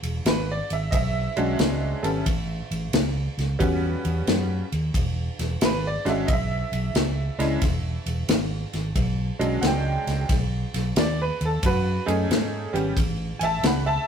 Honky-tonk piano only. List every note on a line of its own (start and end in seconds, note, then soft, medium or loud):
0.28 0.48 B4 medium
0.51 0.71 D5 medium
0.73 0.93 E5 medium
0.91 0.96 D#5 medium
0.91 2.90 E5 loud
1.36 1.99 G#3 medium
1.36 2.00 C#4 medium
1.36 1.99 D4 medium
1.36 2.00 F#4 medium
2.03 2.24 G3 medium
2.03 2.24 B3 medium
2.03 2.24 C#4 soft
2.03 2.24 A4 medium
3.59 4.62 G3 medium
3.59 4.62 B3 medium
3.59 4.63 C#4 medium
3.59 4.63 F#4 medium
5.65 5.85 B4 loud
5.87 6.07 D5 medium
6.05 6.25 G#3 medium
6.05 6.25 C#4 medium
6.05 6.26 D4 medium
6.05 6.26 F#4 medium
6.09 6.29 E5 medium
6.27 6.32 D#5 medium
6.32 8.27 E5 medium
7.39 7.59 G#3 medium
7.39 7.59 C#4 medium
7.39 7.59 D4 medium
7.39 7.59 E4 medium
9.39 10.25 F#3 medium
9.39 10.24 G#3 medium
9.39 10.24 C#4 medium
9.39 10.24 D4 medium
9.61 9.66 F#5 medium
9.67 10.29 G5 medium
10.99 11.19 D5 loud
11.22 11.42 B4 medium
11.45 11.65 A4 medium
11.66 12.06 F#4 medium
11.66 12.08 B4 loud
12.06 12.69 A3 medium
12.06 12.69 C#4 medium
12.06 12.69 D#4 medium
12.06 12.69 G#4 medium
12.73 12.94 G3 medium
12.73 12.94 B3 medium
12.73 12.94 C#4 soft
12.73 12.94 G4 medium
13.39 13.63 E5 medium
13.39 13.45 G#5 medium
13.44 13.64 A5 loud
13.66 13.86 F#5 medium
13.66 13.87 B5 medium
13.86 14.07 E5 medium
13.86 14.07 A5 loud